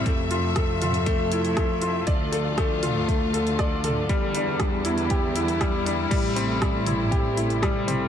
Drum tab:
CC |----------------|----------------|----------------|x---------------|
HH |x-x-x-xxx-xxx-x-|x-x-x-x-x-xxx-x-|x-x-x-xxx-xxx-x-|x-x-x-x-x-xxx-x-|
SD |----r-------r---|----r-------r---|----r-------r---|----r-------r---|
T2 |------o---------|------o-------o-|----------------|------o-------o-|
BD |o---o---o---o---|o---o---o---o---|o---o---o---o---|o---o---o---o---|